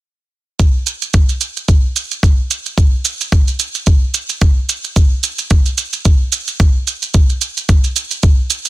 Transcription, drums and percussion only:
0.59 kick, shaker
0.87 shaker
1.02 shaker
1.14 kick, shaker
1.29 shaker
1.41 shaker
1.57 shaker
1.68 kick, shaker
1.96 shaker
2.11 shaker
2.23 kick, shaker
2.51 shaker
2.66 shaker
2.78 kick, shaker
3.05 shaker
3.21 shaker
3.32 kick, shaker
3.48 shaker
3.59 shaker
3.75 shaker
3.87 kick, shaker
4.14 shaker
4.29 shaker
4.41 kick, shaker
4.69 shaker
4.84 shaker
4.96 kick, shaker
5.23 shaker
5.38 shaker
5.50 kick, shaker
5.66 shaker
5.78 shaker
5.93 shaker
6.05 kick, shaker
6.32 shaker
6.48 shaker
6.60 kick, shaker
6.87 shaker
7.02 shaker
7.14 kick, shaker
7.30 shaker
7.41 shaker
7.57 shaker
7.69 kick, shaker
7.84 shaker
7.96 shaker
8.11 shaker
8.23 kick, shaker
8.50 shaker
8.65 shaker

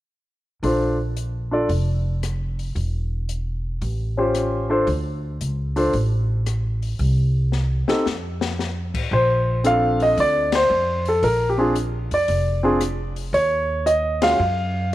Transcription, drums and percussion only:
0.63 open hi-hat
1.17 closed hi-hat
1.69 open hi-hat
2.23 cross-stick, closed hi-hat
2.59 open hi-hat
2.76 open hi-hat
3.29 closed hi-hat
3.82 open hi-hat
4.35 cross-stick, closed hi-hat
4.87 open hi-hat
5.41 closed hi-hat
5.76 open hi-hat
5.93 open hi-hat
6.46 cross-stick, closed hi-hat
6.82 open hi-hat
6.99 open hi-hat
7.52 snare
7.88 snare
8.06 snare
8.41 snare
8.59 snare
8.94 kick, crash
9.64 closed hi-hat
10.00 open hi-hat
10.18 open hi-hat
10.52 snare, ride
11.05 open hi-hat
11.23 open hi-hat
11.75 closed hi-hat
12.11 open hi-hat
12.28 open hi-hat
12.81 cross-stick, closed hi-hat
13.16 open hi-hat
13.34 open hi-hat
13.87 closed hi-hat
14.22 snare, ride

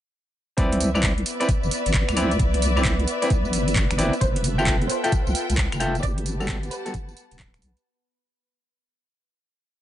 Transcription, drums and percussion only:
0.58 kick, closed hi-hat, tambourine
0.72 closed hi-hat
0.80 open hi-hat, tambourine
0.95 tambourine, claves
1.03 kick, clap, tambourine
1.18 closed hi-hat
1.26 open hi-hat, tambourine
1.41 closed hi-hat, tambourine
1.49 kick, closed hi-hat, tambourine
1.63 tambourine
1.71 open hi-hat, tambourine
1.86 closed hi-hat, tambourine
1.94 kick, clap, tambourine
2.09 finger snap, closed hi-hat, tambourine, claves
2.17 open hi-hat, tambourine, claves
2.31 closed hi-hat, tambourine
2.39 kick, closed hi-hat, tambourine
2.54 closed hi-hat
2.62 open hi-hat, tambourine
2.77 tambourine, claves
2.85 kick, clap, tambourine
3.00 closed hi-hat
3.08 open hi-hat, tambourine
3.22 closed hi-hat, tambourine
3.30 kick, closed hi-hat, tambourine
3.45 tambourine
3.53 open hi-hat, tambourine
3.68 closed hi-hat, tambourine
3.76 kick, clap, tambourine
3.91 finger snap, closed hi-hat, tambourine
3.99 open hi-hat, tambourine
4.13 closed hi-hat, tambourine
4.21 kick, closed hi-hat, tambourine
4.36 closed hi-hat
4.44 open hi-hat, tambourine
4.59 tambourine, claves
4.67 kick, clap, tambourine
4.82 closed hi-hat
4.90 open hi-hat, tambourine
5.04 closed hi-hat, tambourine
5.12 kick, closed hi-hat, tambourine
5.27 tambourine
5.35 open hi-hat, tambourine
5.50 closed hi-hat, tambourine
5.58 kick, clap, tambourine
5.72 finger snap, closed hi-hat, tambourine, claves
5.80 open hi-hat, tambourine, claves
5.95 closed hi-hat, tambourine
6.03 kick, closed hi-hat, tambourine
6.18 closed hi-hat
6.26 open hi-hat, tambourine
6.41 tambourine, claves
6.49 kick, clap, tambourine
6.63 closed hi-hat, tambourine
6.71 open hi-hat, tambourine
6.86 closed hi-hat, tambourine
6.94 kick, closed hi-hat, tambourine
7.09 tambourine
7.17 open hi-hat, tambourine
7.31 closed hi-hat, tambourine
7.39 kick, clap, tambourine
7.54 finger snap, closed hi-hat, tambourine
7.62 open hi-hat, tambourine
7.77 closed hi-hat, tambourine

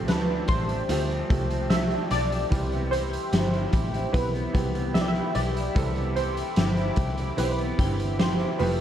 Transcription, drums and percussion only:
0.08 snare, closed hi-hat
0.48 kick, closed hi-hat
0.69 closed hi-hat
0.89 closed hi-hat
1.10 closed hi-hat
1.30 kick, closed hi-hat
1.50 closed hi-hat
1.70 snare, closed hi-hat
1.91 closed hi-hat
2.11 snare, closed hi-hat
2.32 closed hi-hat
2.52 kick, closed hi-hat
2.72 closed hi-hat
2.93 closed hi-hat
3.13 closed hi-hat
3.33 snare, closed hi-hat
3.53 closed hi-hat
3.73 kick, closed hi-hat
3.94 closed hi-hat
4.14 kick, closed hi-hat
4.35 closed hi-hat
4.55 kick, closed hi-hat
4.75 closed hi-hat
4.95 snare, closed hi-hat
5.15 closed hi-hat
5.35 closed hi-hat
5.57 closed hi-hat
5.76 kick, closed hi-hat
5.96 closed hi-hat
6.16 closed hi-hat
6.37 closed hi-hat
6.56 snare, closed hi-hat
6.77 closed hi-hat
6.96 kick, closed hi-hat
7.18 closed hi-hat
7.38 closed hi-hat
7.58 closed hi-hat
7.79 kick, closed hi-hat
8.00 closed hi-hat
8.19 snare, closed hi-hat
8.39 closed hi-hat
8.59 open hi-hat

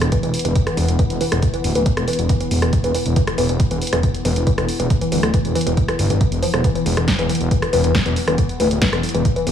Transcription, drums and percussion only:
0.01 cross-stick, closed hi-hat
0.12 kick, closed hi-hat
0.23 closed hi-hat
0.34 open hi-hat
0.39 closed hi-hat
0.45 closed hi-hat
0.56 kick, closed hi-hat
0.67 cross-stick, closed hi-hat
0.77 open hi-hat
0.89 closed hi-hat
0.99 kick, closed hi-hat
1.10 closed hi-hat
1.21 open hi-hat
1.32 cross-stick, closed hi-hat
1.42 kick, closed hi-hat
1.54 closed hi-hat
1.64 open hi-hat
1.75 closed hi-hat
1.86 kick, closed hi-hat
1.97 cross-stick, closed hi-hat
2.08 open hi-hat
2.13 closed hi-hat
2.19 closed hi-hat
2.29 kick, closed hi-hat
2.41 closed hi-hat
2.51 open hi-hat
2.62 cross-stick, closed hi-hat
2.73 kick, closed hi-hat
2.84 closed hi-hat
2.95 open hi-hat
3.06 closed hi-hat
3.16 kick, closed hi-hat
3.27 cross-stick, closed hi-hat
3.38 open hi-hat
3.49 closed hi-hat
3.60 kick, closed hi-hat
3.71 closed hi-hat
3.82 open hi-hat
3.87 closed hi-hat
3.93 cross-stick, closed hi-hat
4.03 kick, closed hi-hat
4.14 closed hi-hat
4.25 open hi-hat
4.36 closed hi-hat
4.47 kick, closed hi-hat
4.58 cross-stick, closed hi-hat
4.69 open hi-hat
4.80 closed hi-hat
4.90 kick, closed hi-hat
5.01 closed hi-hat
5.12 open hi-hat
5.23 cross-stick, closed hi-hat
5.34 kick, closed hi-hat
5.45 closed hi-hat
5.55 open hi-hat
5.61 closed hi-hat
5.67 closed hi-hat
5.77 kick, closed hi-hat
5.88 cross-stick, closed hi-hat
5.99 open hi-hat
6.10 closed hi-hat
6.21 kick, closed hi-hat
6.32 closed hi-hat
6.43 open hi-hat
6.54 cross-stick, closed hi-hat
6.64 kick, closed hi-hat
6.75 closed hi-hat
6.86 open hi-hat
6.97 cross-stick, closed hi-hat
7.08 kick, snare, closed hi-hat
7.19 closed hi-hat
7.29 open hi-hat
7.35 closed hi-hat
7.41 closed hi-hat
7.51 kick, closed hi-hat
7.62 cross-stick, closed hi-hat
7.73 open hi-hat
7.84 closed hi-hat
7.95 kick, snare, closed hi-hat
8.06 closed hi-hat
8.16 open hi-hat
8.28 cross-stick, closed hi-hat
8.38 kick, closed hi-hat
8.49 closed hi-hat
8.60 open hi-hat
8.71 closed hi-hat
8.82 kick, snare, closed hi-hat
8.93 cross-stick, closed hi-hat
9.03 open hi-hat
9.09 closed hi-hat
9.15 closed hi-hat
9.25 kick, closed hi-hat
9.36 closed hi-hat
9.47 open hi-hat

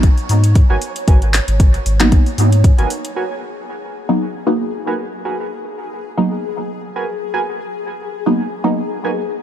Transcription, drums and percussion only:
0.03 kick, closed hi-hat
0.18 open hi-hat
0.29 open hi-hat
0.44 closed hi-hat
0.55 kick, closed hi-hat
0.82 open hi-hat
0.96 closed hi-hat
1.08 kick, closed hi-hat
1.22 closed hi-hat
1.34 clap, open hi-hat
1.48 closed hi-hat
1.60 kick, closed hi-hat
1.74 closed hi-hat
1.86 open hi-hat
2.00 clap, closed hi-hat
2.12 kick, closed hi-hat
2.26 open hi-hat
2.38 open hi-hat
2.52 closed hi-hat
2.64 kick, closed hi-hat
2.78 closed hi-hat
2.90 open hi-hat
3.05 closed hi-hat

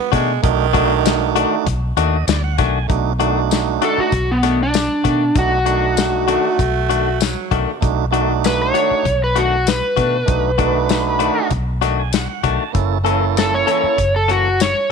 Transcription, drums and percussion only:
0.13 kick, snare, closed hi-hat
0.44 kick, closed hi-hat
0.74 kick, closed hi-hat
1.06 snare, closed hi-hat, tambourine
1.36 closed hi-hat
1.67 kick, closed hi-hat
1.97 closed hi-hat
2.28 snare, closed hi-hat, tambourine
2.58 kick, snare, closed hi-hat
2.90 kick, closed hi-hat
3.20 closed hi-hat
3.51 snare, closed hi-hat, tambourine
3.82 closed hi-hat
4.12 kick, closed hi-hat
4.43 snare, closed hi-hat
4.74 snare, closed hi-hat, tambourine
5.05 kick, closed hi-hat
5.36 kick, closed hi-hat
5.66 closed hi-hat
5.97 snare, closed hi-hat, tambourine
6.28 closed hi-hat
6.59 kick, closed hi-hat
6.90 closed hi-hat
7.21 snare, closed hi-hat, tambourine
7.51 kick, closed hi-hat
7.82 kick, closed hi-hat
8.14 closed hi-hat
8.44 snare, closed hi-hat, tambourine
8.75 closed hi-hat
9.05 kick, closed hi-hat
9.36 closed hi-hat
9.67 snare, closed hi-hat, tambourine
9.97 kick, closed hi-hat
10.28 kick, closed hi-hat
10.59 kick, closed hi-hat
10.89 snare, closed hi-hat, tambourine
11.20 closed hi-hat
11.51 kick, closed hi-hat
11.82 snare, closed hi-hat
12.13 snare, closed hi-hat, tambourine
12.44 kick, closed hi-hat
12.75 kick, closed hi-hat
13.06 closed hi-hat
13.37 snare, closed hi-hat, tambourine
13.68 closed hi-hat
13.98 kick, closed hi-hat
14.29 closed hi-hat
14.60 snare, closed hi-hat, tambourine

